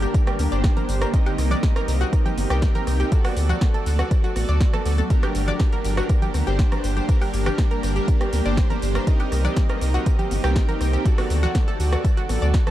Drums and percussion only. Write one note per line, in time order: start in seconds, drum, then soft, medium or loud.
0.02 closed hi-hat soft
0.02 tambourine soft
0.14 kick loud
0.14 closed hi-hat medium
0.14 tambourine soft
0.27 cross-stick medium
0.27 closed hi-hat soft
0.27 tambourine soft
0.39 open hi-hat loud
0.39 tambourine medium
0.39 high conga medium
0.52 closed hi-hat soft
0.52 tambourine soft
0.64 kick loud
0.64 cross-stick soft
0.64 snare loud
0.64 closed hi-hat medium
0.64 tambourine soft
0.77 closed hi-hat soft
0.77 tambourine soft
0.77 high conga medium
0.77 low conga medium
0.89 open hi-hat loud
0.89 tambourine medium
1.02 cross-stick medium
1.02 closed hi-hat soft
1.02 tambourine soft
1.14 kick loud
1.14 closed hi-hat medium
1.14 tambourine soft
1.26 closed hi-hat soft
1.26 tambourine soft
1.26 high woodblock medium
1.38 cross-stick soft
1.38 open hi-hat loud
1.38 tambourine medium
1.51 closed hi-hat soft
1.51 tambourine soft
1.51 low conga medium
1.51 high woodblock medium
1.63 kick loud
1.63 snare loud
1.63 closed hi-hat medium
1.63 tambourine soft
1.76 cross-stick medium
1.76 closed hi-hat soft
1.76 tambourine soft
1.88 open hi-hat loud
1.88 tambourine medium
2.01 closed hi-hat soft
2.01 tambourine soft
2.13 kick loud
2.13 cross-stick soft
2.13 closed hi-hat medium
2.13 tambourine soft
2.26 closed hi-hat soft
2.26 tambourine soft
2.26 low conga loud
2.38 open hi-hat loud
2.38 tambourine medium
2.38 high conga medium
2.50 cross-stick medium
2.50 closed hi-hat soft
2.50 tambourine soft
2.62 kick loud
2.62 snare loud
2.62 closed hi-hat medium
2.62 tambourine soft
2.75 closed hi-hat soft
2.75 tambourine soft
2.75 low conga medium
2.87 cross-stick soft
2.87 open hi-hat loud
2.87 tambourine medium
3.00 closed hi-hat soft
3.00 tambourine soft
3.12 kick loud
3.12 closed hi-hat medium
3.12 tambourine soft
3.25 cross-stick medium
3.25 open hi-hat medium
3.25 tambourine soft
3.25 high conga medium
3.25 high woodblock medium
3.37 open hi-hat loud
3.37 tambourine medium
3.49 closed hi-hat soft
3.49 tambourine soft
3.49 low conga loud
3.49 high woodblock medium
3.61 kick loud
3.61 cross-stick soft
3.61 snare loud
3.61 closed hi-hat medium
3.61 tambourine soft
3.74 closed hi-hat soft
3.74 tambourine soft
3.86 open hi-hat loud
3.86 tambourine medium
3.99 cross-stick medium
3.99 tambourine soft
4.11 kick loud
4.11 closed hi-hat medium
4.11 tambourine soft
4.24 closed hi-hat soft
4.24 tambourine soft
4.36 cross-stick soft
4.36 open hi-hat loud
4.36 tambourine medium
4.36 high conga medium
4.49 closed hi-hat soft
4.49 tambourine soft
4.60 kick loud
4.60 snare loud
4.60 closed hi-hat medium
4.60 tambourine soft
4.73 cross-stick medium
4.73 closed hi-hat soft
4.73 tambourine soft
4.73 high conga medium
4.73 low conga medium
4.86 open hi-hat loud
4.86 tambourine medium
4.98 closed hi-hat soft
4.98 tambourine soft
4.98 high conga medium
5.10 kick loud
5.10 closed hi-hat medium
5.10 tambourine soft
5.23 cross-stick medium
5.23 closed hi-hat soft
5.23 tambourine soft
5.23 high woodblock medium
5.35 open hi-hat loud
5.35 tambourine medium
5.48 closed hi-hat soft
5.48 tambourine soft
5.48 low conga medium
5.48 high woodblock medium
5.59 kick loud
5.59 cross-stick soft
5.59 snare loud
5.59 closed hi-hat medium
5.59 tambourine soft
5.72 closed hi-hat soft
5.72 tambourine soft
5.85 open hi-hat loud
5.85 tambourine medium
5.97 cross-stick medium
5.97 closed hi-hat soft
5.97 tambourine soft
6.09 kick loud
6.09 closed hi-hat medium
6.09 tambourine soft
6.22 closed hi-hat soft
6.22 tambourine soft
6.22 low conga loud
6.34 cross-stick soft
6.34 open hi-hat loud
6.34 tambourine medium
6.34 high conga medium
6.47 closed hi-hat soft
6.47 tambourine soft
6.59 kick loud
6.59 snare loud
6.59 closed hi-hat medium
6.59 tambourine soft
6.72 cross-stick medium
6.72 closed hi-hat soft
6.72 tambourine soft
6.72 low conga medium
6.84 open hi-hat loud
6.84 tambourine medium
6.97 closed hi-hat soft
6.97 tambourine soft
7.09 kick loud
7.09 cross-stick soft
7.09 closed hi-hat medium
7.09 tambourine soft
7.22 open hi-hat medium
7.22 tambourine soft
7.22 high woodblock medium
7.34 open hi-hat loud
7.34 tambourine medium
7.46 cross-stick medium
7.46 closed hi-hat soft
7.46 tambourine soft
7.46 low conga medium
7.46 high woodblock medium
7.58 kick loud
7.58 snare loud
7.58 closed hi-hat medium
7.58 tambourine soft
7.71 closed hi-hat soft
7.71 tambourine soft
7.83 cross-stick soft
7.83 open hi-hat loud
7.83 tambourine medium
7.96 closed hi-hat soft
7.96 tambourine soft
8.08 kick loud
8.08 closed hi-hat medium
8.08 tambourine soft
8.21 cross-stick medium
8.21 closed hi-hat soft
8.21 tambourine soft
8.33 open hi-hat loud
8.33 tambourine medium
8.33 high conga medium
8.46 closed hi-hat soft
8.46 tambourine soft
8.57 kick loud
8.57 cross-stick soft
8.57 snare loud
8.57 closed hi-hat medium
8.57 tambourine soft
8.70 closed hi-hat soft
8.70 tambourine soft
8.70 high conga medium
8.70 low conga medium
8.82 open hi-hat loud
8.82 tambourine medium
8.95 cross-stick medium
8.95 closed hi-hat soft
8.95 tambourine soft
9.07 kick loud
9.07 closed hi-hat loud
9.07 tambourine soft
9.20 closed hi-hat soft
9.20 tambourine soft
9.20 high woodblock medium
9.32 cross-stick soft
9.32 open hi-hat loud
9.32 tambourine medium
9.45 closed hi-hat soft
9.45 tambourine soft
9.45 low conga medium
9.45 high woodblock medium
9.56 kick loud
9.56 snare loud
9.56 closed hi-hat medium
9.56 tambourine soft
9.69 cross-stick medium
9.69 closed hi-hat soft
9.69 tambourine soft
9.81 open hi-hat loud
9.81 tambourine medium
9.94 closed hi-hat soft
9.94 tambourine soft
10.06 kick loud
10.06 cross-stick soft
10.06 closed hi-hat loud
10.06 tambourine soft
10.19 closed hi-hat soft
10.19 tambourine soft
10.19 low conga loud
10.31 open hi-hat loud
10.31 tambourine medium
10.31 high conga medium
10.44 cross-stick medium
10.44 closed hi-hat soft
10.44 tambourine soft
10.56 kick loud
10.56 snare loud
10.56 closed hi-hat loud
10.56 tambourine soft
10.69 closed hi-hat soft
10.69 tambourine soft
10.69 low conga medium
10.81 cross-stick soft
10.81 open hi-hat loud
10.81 tambourine medium
10.93 closed hi-hat soft
10.93 tambourine soft
11.05 kick loud
11.05 closed hi-hat loud
11.05 tambourine soft
11.18 cross-stick medium
11.18 open hi-hat medium
11.18 tambourine soft
11.18 high conga medium
11.18 high woodblock medium
11.30 open hi-hat loud
11.30 tambourine medium
11.43 closed hi-hat soft
11.43 tambourine soft
11.43 low conga medium
11.43 high woodblock medium
11.55 kick loud
11.55 cross-stick soft
11.55 snare loud
11.55 closed hi-hat loud
11.55 tambourine soft
11.68 closed hi-hat soft
11.68 tambourine soft
11.80 open hi-hat loud
11.80 tambourine medium
11.92 cross-stick medium
11.92 closed hi-hat soft
11.92 tambourine soft
12.05 kick loud
12.05 closed hi-hat medium
12.05 tambourine soft
12.17 closed hi-hat soft
12.17 tambourine soft
12.29 cross-stick soft
12.29 open hi-hat loud
12.29 tambourine medium
12.29 high conga medium
12.42 closed hi-hat soft
12.42 tambourine soft
12.54 kick loud
12.54 snare loud
12.54 closed hi-hat medium
12.54 tambourine soft
12.67 cross-stick medium
12.67 closed hi-hat soft
12.67 tambourine soft
12.67 high conga medium
12.67 low conga medium